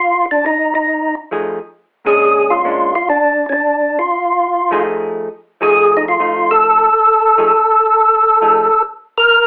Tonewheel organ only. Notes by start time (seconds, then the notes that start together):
Already playing: F4
0.31 D4
0.46 D#4
0.75 D#4
2.07 G#4
2.50 F4
2.95 F4
3.09 D4
3.49 C#4 D4
3.99 F4
5.63 G#4
5.97 D#4
6.08 F4
6.51 A4
9.18 A#4